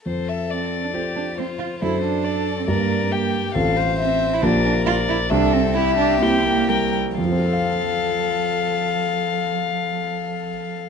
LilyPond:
<<
  \new Staff \with { instrumentName = "Violin" } { \time 4/4 \key f \major \tempo 4 = 134 c''8 e''8 d''2 c''4 | c''4 d''4 d''4 g''4 | f''4 e''4 d''4 d''4 | e''4 e''4 g''4 g''8 r8 |
f''1~ | f''1 | }
  \new Staff \with { instrumentName = "Violin" } { \time 4/4 \key f \major a'2 g'4 f'4 | a'4 a'4 bes'4 g'4 | a'8 c''4. bes'2 | a'4 g'2 bes'8 r8 |
a'1~ | a'1 | }
  \new Staff \with { instrumentName = "Grand piano" } { \time 4/4 \key f \major f,2 <f' a' c''>2 | <fis, d' a' c''>2 <g, d' g' bes'>2 | <a,, c' f' a'>2 <bes,, bes f' g'>2 | c,2 <bes e' g'>2 |
<f, f c' f' a' f''>1~ | <f, f c' f' a' f''>1 | }
  \new Staff \with { instrumentName = "Cello" } { \time 4/4 \key f \major r4 c'8. d'16 c'8 d'8 c'8 f'8 | e'8 d'4~ d'16 c'16 bes8. c'16 bes8. g16 | r4 c'8. e'16 d'8 d'8 f'8 e'8 | d'8 c'8 e'8 d'8 c'8 bes8 g4 |
f1~ | f1 | }
>>